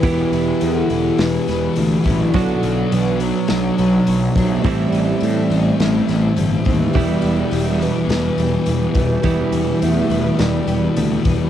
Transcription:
<<
  \new Staff \with { instrumentName = "Clean electric guitar" } { \time 4/4 \key e \minor \tempo 4 = 104 <e b e' g'>1 | <b, fis b d' fis'>1 | <a, e g c' e'>1 | <e g b e'>1 |
<e g b e'>1 | }
  \new Staff \with { instrumentName = "Twelve-string acoustic guitar" } { \clef bass \time 4/4 \key e \minor <e b e'>8 e8 b8 e'8 e8 b8 e8 e'8 | fis8 fis8 b8 d'8 fis8 b8 fis8 d'8 | g8 g8 g8 c'8 g8 g8 g8 c'8 | g8 g8 g8 b8 g8 g8 g8 b8 |
g8 g8 g8 b8 g8 g8 g8 b8 | }
  \new Staff \with { instrumentName = "Bass clarinet" } { \clef bass \time 4/4 \key e \minor e4 d4 e4. r8 | d4 e8 fis4 fis4 fis8 | a8 g8 g4 a4. r8 | g4. e2 e8~ |
e4 a4 g4. r8 | }
  \new Staff \with { instrumentName = "Distorted electric guitar" } { \clef bass \time 4/4 \key e \minor <e, b, e>1 | <b, fis b>1 | <a, e a>1 | <e, b, e>1 |
<e, b, e>1 | }
  \new Staff \with { instrumentName = "Picked electric bass" } { \clef bass \time 4/4 \key e \minor e,,8 e,,8 e,8 e,,8 e,,8 e,,8 d,8 a,,8 | b,,8 b,,8 b,,4 b,,8 b,,8 b,,8 b,,8 | a,,8 a,,8 a,8 a,,8 a,,8 a,,8 g,,8 dis,8 | e,,8 e,,8 e,,4 e,,8 e,,8 e,,8 e,,8 |
e,,8 e,,8 e,8 e,,8 e,,8 e,,8 d,8 e,,8 | }
  \new DrumStaff \with { instrumentName = "Drums" } \drummode { \time 4/4 <hho bd>8 hho8 hho8 hho8 <hho sn>8 <hho sn>8 hho8 <hho bd>8 | <hho bd>8 hho8 hho8 hho8 <hho sn>8 hho8 hho8 <hho bd>8 | <hho bd>8 hho8 hho8 hho8 <hho sn>8 <hho sn>8 hho8 <hho bd>8 | <hho bd>8 hho8 hho8 hho8 <hho sn>8 hho8 hho8 <hho bd>8 |
<hho bd>8 hho8 hho8 hho8 <hho sn>8 hho8 hho8 <hho bd>8 | }
>>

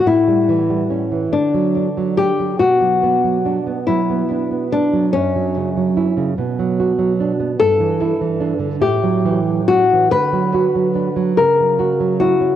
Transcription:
<<
  \new Staff \with { instrumentName = "Nylon-string guitar" } { \time 6/8 \key d \major \tempo 4. = 48 e'4. d'4 g'8 | fis'4. e'4 d'8 | cis'4. r4. | a'4. g'4 fis'8 |
b'4. ais'4 fis'8 | }
  \new Staff \with { instrumentName = "Nylon-string guitar" } { \clef bass \time 6/8 \key d \major a,16 g16 e16 g16 cis'16 e16 d16 fis16 d'16 fis16 d'16 fis16 | b,16 fis16 b16 fis16 d'16 b16 fis16 b16 d'16 b16 d'16 fis16 | fis,16 fis16 cis16 fis16 e'16 cis16 b,16 fis16 fis'16 fis16 d'16 b16 | g,16 e16 e'16 e16 d'16 d16 a,16 fis16 e16 fis16 cis'16 e16 |
d16 fis16 fis'16 fis16 d'16 fis16 cis16 fis16 fis'16 fis16 e'16 cis'16 | }
>>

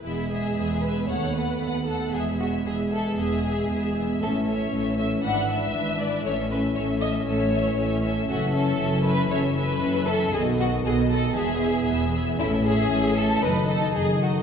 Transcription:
<<
  \new Staff \with { instrumentName = "Violin section" } { \time 4/4 \key e \major \tempo 4 = 117 e''8 e''8 e''8 e''8 fis''8 fis''8 fis''8 fis''8 | e''8 e''8 e''8 e''8 e''8 e''8 e''8 e''8 | e''8 e''8 e''8 e''8 e''8 e''8 e''8 e''8 | e''8 e''8 e''8 e''8 e''8 e''8 e''8 e''8 |
\key fis \dorian e''8 e''8 e''8 e''8 e''8 e''8 e''8 e''8 | dis''8 dis''8 dis''8 dis''8 e''8 e''8 e''8 e''8 | e''8 e''8 e''8 e''8 dis''8 dis''8 dis''8 dis''8 | }
  \new Staff \with { instrumentName = "Violin section" } { \time 4/4 \key e \major e'8 gis'4 b'8 cis''8 b'4 a'8 | gis'8 fis'8 gis'8 a'8 gis'4. r8 | a'8 cis''4 e''8 fis''8 e''4 d''8 | cis''8 b'8 cis''8 dis''8 cis''4. r8 |
\key fis \dorian fis'8 a'4 b'8 cis''8 b'4 a'8 | gis'8 fis'8 gis'8 a'8 gis'4. r8 | e'8 gis'4 a'8 b'8 a'8 gis'8 fis'8 | }
  \new Staff \with { instrumentName = "Viola section" } { \time 4/4 \key e \major <b gis'>8 <b gis'>8 <b gis'>8 <b gis'>8 <b a'>8 <b a'>8 <b a'>8 <b a'>8 | <b gis'>8 <b gis'>8 <b gis'>8 <b gis'>8 <b gis'>8 <b gis'>8 <b gis'>8 <b gis'>8 | <cis' a'>8 <cis' a'>8 <cis' a'>8 <cis' a'>8 <d' b'>8 <d' b'>8 <d' b'>8 <d' b'>8 | <cis' a'>8 <cis' a'>8 <cis' a'>8 <cis' a'>8 <cis' a'>8 <cis' a'>8 <cis' a'>8 <cis' a'>8 |
\key fis \dorian <cis' a'>8 <cis' a'>8 <cis' a'>8 <cis' a'>8 <cis' a'>8 <cis' a'>8 <cis' a'>8 <cis' a'>8 | <b a'>8 <b a'>8 <b a'>8 <b a'>8 <b gis'>8 <b gis'>8 <b gis'>8 <b gis'>8 | <cis' a'>8 <cis' a'>8 <cis' a'>8 <cis' a'>8 <dis' a'>8 <dis' a'>8 <dis' a'>8 <dis' a'>8 | }
  \new Staff \with { instrumentName = "French horn section" } { \time 4/4 \key e \major << { b1~ | b1 | cis'2 d'2 | cis'1~ |
\key fis \dorian cis'1 | b1 | cis'2 dis'2 | } \\ { gis2 a2 | gis1 | e1~ | e1 |
e1 | dis2 e2~ | e2 dis2 | } >> }
  \new Staff \with { instrumentName = "Cello section" } { \clef bass \time 4/4 \key e \major e,4 e,4 dis,4 dis,4 | e,4 e,4 e,4 e,4 | a,4 a,4 gis,4 gis,4 | a,4 a,4 a,4 a,4 |
\key fis \dorian fis,4 fis,4 fis,4 fis,4 | b,4 b,4 e,4 e,4 | a,4 a,4 fis,4 fis,4 | }
  \new Staff \with { instrumentName = "Double bass section" } { \clef bass \time 4/4 \key e \major e,,4 e,,4 dis,4 dis,4 | e,,4 e,,4 e,,4 e,,4 | a,,4 a,,4 gis,,4 gis,,4 | a,,4 a,,4 a,,4 a,,4 |
\key fis \dorian fis,,4 fis,,4 fis,,4 fis,,4 | b,,4 b,,4 e,,4 e,,4 | a,,4 a,,4 fis,,4 fis,,4 | }
>>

